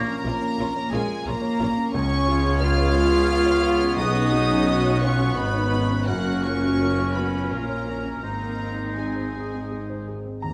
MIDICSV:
0, 0, Header, 1, 11, 480
1, 0, Start_track
1, 0, Tempo, 674916
1, 1378, Time_signature, 3, 2, 24, 8
1, 2341, Tempo, 690449
1, 3781, Tempo, 717703
1, 5701, Tempo, 733496
1, 7207, End_track
2, 0, Start_track
2, 0, Title_t, "Flute section"
2, 0, Program_c, 0, 73
2, 0, Note_on_c, 0, 89, 92
2, 159, Note_off_c, 0, 89, 0
2, 1372, Note_on_c, 0, 92, 92
2, 2786, Note_off_c, 0, 92, 0
2, 2819, Note_on_c, 0, 90, 92
2, 4742, Note_on_c, 0, 89, 83
2, 4747, Note_off_c, 0, 90, 0
2, 5988, Note_off_c, 0, 89, 0
2, 6185, Note_on_c, 0, 87, 69
2, 6927, Note_off_c, 0, 87, 0
2, 7207, End_track
3, 0, Start_track
3, 0, Title_t, "Violin section"
3, 0, Program_c, 1, 48
3, 0, Note_on_c, 1, 82, 127
3, 641, Note_off_c, 1, 82, 0
3, 659, Note_on_c, 1, 80, 121
3, 894, Note_on_c, 1, 82, 127
3, 897, Note_off_c, 1, 80, 0
3, 1375, Note_on_c, 1, 85, 127
3, 1378, Note_off_c, 1, 82, 0
3, 1847, Note_off_c, 1, 85, 0
3, 1850, Note_on_c, 1, 89, 127
3, 2794, Note_off_c, 1, 89, 0
3, 2819, Note_on_c, 1, 87, 127
3, 3525, Note_off_c, 1, 87, 0
3, 3546, Note_on_c, 1, 85, 119
3, 3776, Note_on_c, 1, 83, 124
3, 3781, Note_off_c, 1, 85, 0
3, 4253, Note_on_c, 1, 78, 121
3, 4256, Note_off_c, 1, 83, 0
3, 4501, Note_on_c, 1, 85, 117
3, 4502, Note_off_c, 1, 78, 0
3, 4966, Note_on_c, 1, 83, 95
3, 4980, Note_off_c, 1, 85, 0
3, 5211, Note_off_c, 1, 83, 0
3, 5212, Note_on_c, 1, 82, 99
3, 5684, Note_off_c, 1, 82, 0
3, 5692, Note_on_c, 1, 82, 97
3, 6170, Note_off_c, 1, 82, 0
3, 6183, Note_on_c, 1, 80, 71
3, 6906, Note_off_c, 1, 80, 0
3, 7207, End_track
4, 0, Start_track
4, 0, Title_t, "Oboe"
4, 0, Program_c, 2, 68
4, 0, Note_on_c, 2, 73, 88
4, 110, Note_off_c, 2, 73, 0
4, 1379, Note_on_c, 2, 73, 101
4, 4232, Note_off_c, 2, 73, 0
4, 4252, Note_on_c, 2, 70, 87
4, 5672, Note_off_c, 2, 70, 0
4, 5700, Note_on_c, 2, 72, 61
4, 6901, Note_off_c, 2, 72, 0
4, 7207, End_track
5, 0, Start_track
5, 0, Title_t, "Violin section"
5, 0, Program_c, 3, 48
5, 0, Note_on_c, 3, 70, 113
5, 643, Note_off_c, 3, 70, 0
5, 654, Note_on_c, 3, 68, 97
5, 891, Note_on_c, 3, 70, 98
5, 894, Note_off_c, 3, 68, 0
5, 1371, Note_on_c, 3, 73, 111
5, 1376, Note_off_c, 3, 70, 0
5, 1855, Note_off_c, 3, 73, 0
5, 1860, Note_on_c, 3, 77, 127
5, 2818, Note_off_c, 3, 77, 0
5, 2818, Note_on_c, 3, 75, 113
5, 3524, Note_off_c, 3, 75, 0
5, 3536, Note_on_c, 3, 73, 102
5, 3781, Note_off_c, 3, 73, 0
5, 3781, Note_on_c, 3, 71, 101
5, 4259, Note_off_c, 3, 71, 0
5, 4263, Note_on_c, 3, 66, 98
5, 4503, Note_off_c, 3, 66, 0
5, 4510, Note_on_c, 3, 73, 97
5, 4984, Note_off_c, 3, 73, 0
5, 4984, Note_on_c, 3, 71, 85
5, 5219, Note_off_c, 3, 71, 0
5, 5227, Note_on_c, 3, 70, 77
5, 5700, Note_off_c, 3, 70, 0
5, 5708, Note_on_c, 3, 70, 85
5, 6178, Note_off_c, 3, 70, 0
5, 6182, Note_on_c, 3, 68, 67
5, 6906, Note_off_c, 3, 68, 0
5, 7142, Note_on_c, 3, 82, 74
5, 7207, Note_off_c, 3, 82, 0
5, 7207, End_track
6, 0, Start_track
6, 0, Title_t, "Grand piano"
6, 0, Program_c, 4, 0
6, 0, Note_on_c, 4, 34, 80
6, 56, Note_on_c, 4, 61, 67
6, 81, Control_c, 4, 64, 127
6, 170, Note_on_c, 4, 65, 76
6, 249, Note_off_c, 4, 61, 0
6, 286, Note_on_c, 4, 61, 72
6, 365, Note_off_c, 4, 65, 0
6, 411, Note_on_c, 4, 70, 74
6, 483, Note_off_c, 4, 61, 0
6, 541, Note_on_c, 4, 73, 69
6, 605, Note_off_c, 4, 70, 0
6, 658, Note_on_c, 4, 70, 77
6, 730, Note_off_c, 4, 73, 0
6, 767, Note_on_c, 4, 65, 72
6, 849, Note_off_c, 4, 70, 0
6, 888, Note_on_c, 4, 70, 72
6, 963, Note_off_c, 4, 65, 0
6, 1007, Note_on_c, 4, 73, 79
6, 1085, Note_off_c, 4, 70, 0
6, 1141, Note_on_c, 4, 70, 78
6, 1205, Note_off_c, 4, 73, 0
6, 1253, Note_on_c, 4, 61, 74
6, 1332, Note_off_c, 4, 70, 0
6, 1344, Note_off_c, 4, 34, 0
6, 1376, Note_off_c, 4, 61, 0
6, 1381, Note_on_c, 4, 37, 95
6, 1390, Control_c, 4, 64, 0
6, 1498, Note_on_c, 4, 61, 78
6, 1517, Control_c, 4, 64, 127
6, 1619, Note_on_c, 4, 65, 76
6, 1690, Note_off_c, 4, 61, 0
6, 1729, Note_on_c, 4, 61, 77
6, 1810, Note_off_c, 4, 65, 0
6, 1852, Note_on_c, 4, 71, 79
6, 1926, Note_off_c, 4, 61, 0
6, 1974, Note_on_c, 4, 73, 79
6, 2048, Note_off_c, 4, 71, 0
6, 2097, Note_on_c, 4, 71, 83
6, 2169, Note_off_c, 4, 73, 0
6, 2212, Note_on_c, 4, 65, 77
6, 2291, Note_off_c, 4, 71, 0
6, 2337, Note_on_c, 4, 71, 71
6, 2409, Note_off_c, 4, 65, 0
6, 2458, Note_on_c, 4, 73, 82
6, 2530, Note_off_c, 4, 71, 0
6, 2572, Note_on_c, 4, 71, 80
6, 2650, Note_off_c, 4, 73, 0
6, 2699, Note_on_c, 4, 61, 74
6, 2766, Note_off_c, 4, 71, 0
6, 2791, Note_off_c, 4, 37, 0
6, 2807, Note_on_c, 4, 35, 88
6, 2817, Note_off_c, 4, 61, 0
6, 2830, Control_c, 4, 64, 0
6, 2926, Note_on_c, 4, 61, 74
6, 2957, Control_c, 4, 64, 127
6, 3049, Note_on_c, 4, 66, 75
6, 3121, Note_off_c, 4, 61, 0
6, 3178, Note_on_c, 4, 61, 75
6, 3244, Note_off_c, 4, 66, 0
6, 3292, Note_on_c, 4, 71, 78
6, 3370, Note_off_c, 4, 61, 0
6, 3417, Note_on_c, 4, 73, 76
6, 3489, Note_off_c, 4, 71, 0
6, 3537, Note_on_c, 4, 71, 73
6, 3612, Note_off_c, 4, 73, 0
6, 3661, Note_on_c, 4, 66, 75
6, 3733, Note_off_c, 4, 71, 0
6, 3749, Note_off_c, 4, 35, 0
6, 3773, Note_on_c, 4, 71, 65
6, 3853, Note_off_c, 4, 66, 0
6, 3889, Note_on_c, 4, 73, 78
6, 3965, Note_off_c, 4, 71, 0
6, 4016, Note_on_c, 4, 71, 71
6, 4083, Note_off_c, 4, 73, 0
6, 4135, Note_on_c, 4, 61, 66
6, 4209, Note_off_c, 4, 71, 0
6, 4252, Note_on_c, 4, 42, 82
6, 4258, Note_off_c, 4, 61, 0
6, 4273, Control_c, 4, 64, 0
6, 4379, Control_c, 4, 64, 127
6, 4381, Note_on_c, 4, 61, 66
6, 4503, Note_on_c, 4, 65, 70
6, 4577, Note_off_c, 4, 61, 0
6, 4629, Note_on_c, 4, 61, 63
6, 4697, Note_off_c, 4, 65, 0
6, 4742, Note_on_c, 4, 70, 65
6, 4818, Note_off_c, 4, 61, 0
6, 4866, Note_on_c, 4, 73, 63
6, 4933, Note_off_c, 4, 70, 0
6, 4986, Note_on_c, 4, 70, 57
6, 5053, Note_off_c, 4, 73, 0
6, 5104, Note_on_c, 4, 65, 56
6, 5173, Note_off_c, 4, 70, 0
6, 5223, Note_on_c, 4, 70, 58
6, 5292, Note_off_c, 4, 65, 0
6, 5338, Note_on_c, 4, 73, 60
6, 5412, Note_off_c, 4, 70, 0
6, 5458, Note_on_c, 4, 70, 61
6, 5531, Note_off_c, 4, 73, 0
6, 5571, Note_on_c, 4, 61, 52
6, 5653, Note_off_c, 4, 70, 0
6, 5672, Note_off_c, 4, 42, 0
6, 5698, Note_off_c, 4, 61, 0
6, 5700, Note_on_c, 4, 44, 61
6, 5716, Control_c, 4, 64, 0
6, 5818, Control_c, 4, 64, 127
6, 5826, Note_on_c, 4, 60, 48
6, 5946, Note_on_c, 4, 63, 54
6, 6017, Note_off_c, 4, 60, 0
6, 6066, Note_on_c, 4, 60, 47
6, 6138, Note_off_c, 4, 63, 0
6, 6188, Note_on_c, 4, 68, 54
6, 6258, Note_off_c, 4, 60, 0
6, 6308, Note_on_c, 4, 72, 50
6, 6379, Note_off_c, 4, 68, 0
6, 6431, Note_on_c, 4, 68, 52
6, 6499, Note_off_c, 4, 72, 0
6, 6554, Note_on_c, 4, 63, 50
6, 6621, Note_off_c, 4, 68, 0
6, 6668, Note_on_c, 4, 68, 49
6, 6742, Note_off_c, 4, 63, 0
6, 6790, Note_on_c, 4, 72, 55
6, 6860, Note_off_c, 4, 68, 0
6, 6906, Note_on_c, 4, 68, 51
6, 6981, Note_off_c, 4, 72, 0
6, 7025, Note_on_c, 4, 60, 50
6, 7097, Note_off_c, 4, 68, 0
6, 7117, Note_off_c, 4, 44, 0
6, 7134, Note_on_c, 4, 82, 89
6, 7143, Note_off_c, 4, 60, 0
6, 7143, Note_on_c, 4, 39, 65
6, 7157, Control_c, 4, 64, 0
6, 7207, Note_off_c, 4, 39, 0
6, 7207, Note_off_c, 4, 82, 0
6, 7207, End_track
7, 0, Start_track
7, 0, Title_t, "Viola section"
7, 0, Program_c, 5, 48
7, 182, Note_on_c, 5, 65, 83
7, 184, Note_on_c, 5, 61, 80
7, 239, Note_off_c, 5, 65, 0
7, 241, Note_off_c, 5, 61, 0
7, 423, Note_on_c, 5, 65, 86
7, 425, Note_on_c, 5, 61, 84
7, 480, Note_off_c, 5, 65, 0
7, 482, Note_off_c, 5, 61, 0
7, 661, Note_on_c, 5, 61, 83
7, 661, Note_on_c, 5, 65, 91
7, 717, Note_off_c, 5, 61, 0
7, 718, Note_off_c, 5, 65, 0
7, 899, Note_on_c, 5, 61, 82
7, 899, Note_on_c, 5, 65, 87
7, 956, Note_off_c, 5, 61, 0
7, 956, Note_off_c, 5, 65, 0
7, 1137, Note_on_c, 5, 65, 90
7, 1141, Note_on_c, 5, 61, 86
7, 1194, Note_off_c, 5, 65, 0
7, 1198, Note_off_c, 5, 61, 0
7, 1382, Note_on_c, 5, 56, 102
7, 1385, Note_on_c, 5, 61, 103
7, 1605, Note_off_c, 5, 61, 0
7, 1625, Note_on_c, 5, 65, 98
7, 1861, Note_off_c, 5, 65, 0
7, 1872, Note_on_c, 5, 65, 109
7, 2791, Note_off_c, 5, 56, 0
7, 2805, Note_off_c, 5, 65, 0
7, 2817, Note_on_c, 5, 59, 102
7, 2820, Note_on_c, 5, 68, 97
7, 3049, Note_off_c, 5, 59, 0
7, 3056, Note_on_c, 5, 61, 98
7, 3287, Note_off_c, 5, 68, 0
7, 3294, Note_on_c, 5, 66, 107
7, 3538, Note_off_c, 5, 66, 0
7, 3538, Note_on_c, 5, 65, 94
7, 3782, Note_off_c, 5, 65, 0
7, 3783, Note_off_c, 5, 61, 0
7, 3784, Note_on_c, 5, 63, 91
7, 3785, Note_off_c, 5, 63, 0
7, 3785, Note_on_c, 5, 63, 90
7, 4025, Note_on_c, 5, 61, 94
7, 4261, Note_off_c, 5, 63, 0
7, 4262, Note_on_c, 5, 58, 89
7, 4263, Note_off_c, 5, 61, 0
7, 4265, Note_on_c, 5, 66, 92
7, 4738, Note_off_c, 5, 58, 0
7, 4747, Note_on_c, 5, 58, 90
7, 4978, Note_off_c, 5, 58, 0
7, 4985, Note_on_c, 5, 61, 79
7, 5202, Note_off_c, 5, 66, 0
7, 5219, Note_on_c, 5, 65, 75
7, 5453, Note_off_c, 5, 61, 0
7, 5458, Note_off_c, 5, 65, 0
7, 5461, Note_on_c, 5, 61, 79
7, 5704, Note_off_c, 5, 61, 0
7, 5709, Note_on_c, 5, 63, 70
7, 5710, Note_on_c, 5, 60, 74
7, 6987, Note_off_c, 5, 60, 0
7, 6987, Note_off_c, 5, 63, 0
7, 7207, End_track
8, 0, Start_track
8, 0, Title_t, "Clarinet"
8, 0, Program_c, 6, 71
8, 0, Note_on_c, 6, 58, 95
8, 106, Note_off_c, 6, 58, 0
8, 1378, Note_on_c, 6, 59, 107
8, 4232, Note_off_c, 6, 59, 0
8, 4271, Note_on_c, 6, 61, 93
8, 5682, Note_off_c, 6, 61, 0
8, 5702, Note_on_c, 6, 63, 75
8, 6903, Note_off_c, 6, 63, 0
8, 7207, End_track
9, 0, Start_track
9, 0, Title_t, "French horn section"
9, 0, Program_c, 7, 60
9, 0, Note_on_c, 7, 58, 105
9, 659, Note_off_c, 7, 58, 0
9, 661, Note_on_c, 7, 56, 102
9, 893, Note_off_c, 7, 56, 0
9, 898, Note_on_c, 7, 58, 117
9, 1370, Note_off_c, 7, 58, 0
9, 1381, Note_on_c, 7, 61, 118
9, 1741, Note_off_c, 7, 61, 0
9, 1862, Note_on_c, 7, 65, 127
9, 2800, Note_off_c, 7, 65, 0
9, 2825, Note_on_c, 7, 63, 127
9, 3528, Note_off_c, 7, 63, 0
9, 3535, Note_on_c, 7, 61, 98
9, 3775, Note_off_c, 7, 61, 0
9, 3791, Note_on_c, 7, 59, 114
9, 4264, Note_off_c, 7, 59, 0
9, 4265, Note_on_c, 7, 54, 103
9, 4508, Note_off_c, 7, 54, 0
9, 4515, Note_on_c, 7, 61, 103
9, 4984, Note_on_c, 7, 59, 84
9, 4987, Note_off_c, 7, 61, 0
9, 5220, Note_off_c, 7, 59, 0
9, 5224, Note_on_c, 7, 58, 84
9, 5683, Note_off_c, 7, 58, 0
9, 5691, Note_on_c, 7, 58, 80
9, 6169, Note_off_c, 7, 58, 0
9, 6191, Note_on_c, 7, 56, 61
9, 6910, Note_off_c, 7, 56, 0
9, 7207, End_track
10, 0, Start_track
10, 0, Title_t, "Cello section"
10, 0, Program_c, 8, 48
10, 0, Note_on_c, 8, 58, 110
10, 644, Note_off_c, 8, 58, 0
10, 660, Note_on_c, 8, 56, 108
10, 894, Note_on_c, 8, 58, 110
10, 898, Note_off_c, 8, 56, 0
10, 1378, Note_off_c, 8, 58, 0
10, 1381, Note_on_c, 8, 61, 121
10, 1850, Note_off_c, 8, 61, 0
10, 1862, Note_on_c, 8, 65, 127
10, 2818, Note_on_c, 8, 63, 125
10, 2819, Note_off_c, 8, 65, 0
10, 3539, Note_off_c, 8, 63, 0
10, 3546, Note_on_c, 8, 61, 112
10, 3785, Note_off_c, 8, 61, 0
10, 3788, Note_on_c, 8, 59, 101
10, 4262, Note_off_c, 8, 59, 0
10, 4270, Note_on_c, 8, 54, 101
10, 4506, Note_off_c, 8, 54, 0
10, 4514, Note_on_c, 8, 61, 94
10, 4986, Note_off_c, 8, 61, 0
10, 4992, Note_on_c, 8, 59, 92
10, 5224, Note_off_c, 8, 59, 0
10, 5228, Note_on_c, 8, 58, 83
10, 5700, Note_off_c, 8, 58, 0
10, 5708, Note_on_c, 8, 58, 86
10, 6178, Note_off_c, 8, 58, 0
10, 6188, Note_on_c, 8, 56, 62
10, 6894, Note_off_c, 8, 56, 0
10, 7151, Note_on_c, 8, 39, 72
10, 7207, Note_off_c, 8, 39, 0
10, 7207, End_track
11, 0, Start_track
11, 0, Title_t, "Double bass section"
11, 0, Program_c, 10, 48
11, 181, Note_on_c, 10, 34, 96
11, 238, Note_off_c, 10, 34, 0
11, 419, Note_on_c, 10, 34, 87
11, 476, Note_off_c, 10, 34, 0
11, 660, Note_on_c, 10, 34, 88
11, 717, Note_off_c, 10, 34, 0
11, 898, Note_on_c, 10, 34, 103
11, 955, Note_off_c, 10, 34, 0
11, 1138, Note_on_c, 10, 34, 93
11, 1195, Note_off_c, 10, 34, 0
11, 1374, Note_on_c, 10, 37, 105
11, 2787, Note_off_c, 10, 37, 0
11, 2819, Note_on_c, 10, 35, 105
11, 3764, Note_off_c, 10, 35, 0
11, 3780, Note_on_c, 10, 32, 94
11, 4249, Note_off_c, 10, 32, 0
11, 4258, Note_on_c, 10, 30, 97
11, 5216, Note_on_c, 10, 34, 80
11, 5218, Note_off_c, 10, 30, 0
11, 5700, Note_on_c, 10, 32, 74
11, 5701, Note_off_c, 10, 34, 0
11, 6982, Note_off_c, 10, 32, 0
11, 7141, Note_on_c, 10, 39, 77
11, 7207, Note_off_c, 10, 39, 0
11, 7207, End_track
0, 0, End_of_file